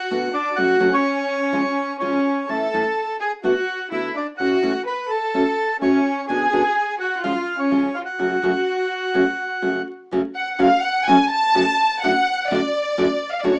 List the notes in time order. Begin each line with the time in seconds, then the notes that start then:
Already playing: F#4 F#5
0.11 B2 D3 A3 B3 F#4
0.33 D4 D5
0.56 C#3 F#3 A3 C#4 F#4 F#5
0.80 C#3 F#3 A3 C#4 F#4
0.92 C#4 C#5
1.52 C#3 F3 G#3 C#4 F4
1.99 C#3 F3 G#3 C#4 F4 C#5
2.49 A2 E3 A3 C#4 E4 A4 A5
2.74 A2 E3 A3 C#4 E4
3.21 G#4 G#5
3.43 D3 A3 B3 F#4 F#5
3.91 D3 A3 B3 E4 F#4 E5
4.16 D4 D5
4.38 A2 E3 A3 C#4 F#4 F#5
4.62 A2 E3 A3 C#4 F#4
4.86 B4 B5
5.10 A4 A5
5.34 A3 C#4 F#4
5.81 A3 C#4 F#4 C#5
6.28 B2 D3 B3 D4 F#4 G#4 G#5
6.52 B2 D3 B3 D4 F#4
7.00 F#4 F#5
7.23 C#3 F3 G#3 C#4 F4 F5
7.59 C#4 C#5
7.71 C#3 F3 G#3 C#4 F4
7.94 F4 F5
8.06 F#4 F#5
8.18 F#2 C#3 F#3 A3 C#4 F#4
8.42 F#2 C#3 F#3 A3 C#4 F#4
9.14 F#2 C#3 F#3 A3 C#4 F#4
9.62 F#2 C#3 F#3 A3 C#4 F#4
10.11 F#2 C#3 F#3 A3 C#4 F#4
10.35 F#5
10.53 F#5
10.59 F#2 C#3 F#3 A3 C#4 F#4 F5
10.82 F#5
11.05 F#2 C#3 F#3 A3 C#4 F#4 G#5
11.31 A5
11.54 F#2 C#3 F#3 A3 C#4 F#4
12.02 F#2 A2 D3 A3 D4 F#4 F#5
12.51 F#2 A2 D3 A3 D4 F#4 D5
12.97 F#2 A2 D3 A3 D4 F#4
13.32 F5
13.41 F#2 A2 D3 A3 D4 F#4 D5
13.47 C#5